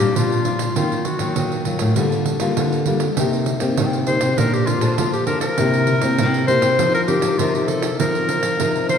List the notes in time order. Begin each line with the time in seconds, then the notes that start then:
Already playing: A#2 G4
0.00 A#2 G3 D4 F4
0.15 A#2 F3 F4, pandeiro
0.32 pandeiro
0.45 G3 D4 F4, pandeiro
0.59 pandeiro
0.75 D#3 F#3 A#3 F4, pandeiro
0.92 pandeiro
1.05 F#4, pandeiro
1.19 D#3 F#3 A#3, pandeiro
1.36 A#2 D#3, pandeiro
1.52 pandeiro
1.65 F#3 A#3 F4, pandeiro
1.79 A2, pandeiro
1.96 D3 G3 A#3 F4, pandeiro
2.12 pandeiro
2.26 pandeiro
2.40 D3 G3 A#3 F4, pandeiro
2.57 D3, pandeiro
2.72 pandeiro
2.86 G3 A#3 F4, pandeiro
3.00 pandeiro
3.17 C3 A#3 D#4 G4, pandeiro
3.33 pandeiro
3.46 pandeiro
3.60 A#3 C4 D#4 G4, pandeiro
3.77 C3 G3, pandeiro
3.93 pandeiro
4.07 A#3 D#4 G4 C5, pandeiro
4.21 C3, pandeiro
4.38 A#2 A#3 D4 A4 A#4 C5, pandeiro
4.53 G4, pandeiro
4.67 F4, pandeiro
4.81 A#2 D4 A4 C5, pandeiro
4.97 F3 A#3 F4, pandeiro
5.13 G4, pandeiro
5.26 D4 A4 A#4 C5, pandeiro
5.41 A#4, pandeiro
5.58 C3 A#3 E4 G4, pandeiro
5.74 pandeiro
5.87 pandeiro
6.01 A#3 C4 E4 G4, pandeiro
6.18 C3 G3, pandeiro
6.34 pandeiro
6.47 A#3 E4 G4 C5, pandeiro
6.62 C3, pandeiro
6.79 F3 C4 D#4 A#4, pandeiro
6.94 A#4, pandeiro
7.07 C4 D#4 G4 A#4, pandeiro
7.22 F3, pandeiro
7.38 C3 F3 C4 D#4 F4 A#4, pandeiro
7.55 G4, pandeiro
7.68 A4, pandeiro
7.82 pandeiro
7.99 F3 C4 D#4 A#4, pandeiro
8.15 pandeiro
8.29 pandeiro
8.43 F3, pandeiro
8.60 C3 F3 C4 D#4 A#4, pandeiro
8.76 pandeiro
8.89 C5, pandeiro